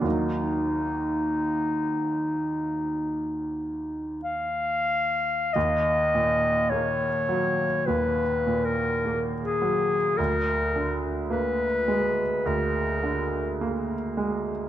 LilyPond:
<<
  \new Staff \with { instrumentName = "Clarinet" } { \time 4/4 \key ees \minor \tempo 4 = 51 ees'2. f''4 | ees''4 des''4 \tuplet 3/2 { ces''4 bes'8~ bes'8 aes'4 } | bes'8. r16 ces''4 bes'4 r4 | }
  \new Staff \with { instrumentName = "Grand piano" } { \clef bass \time 4/4 \key ees \minor <ees, ges bes ees'>1 | ees,8 bes,8 bes8 ges8 ees,8 bes,8 bes8 ges8 | d,8 d8 bes8 aes8 d,8 d8 bes8 aes8 | }
>>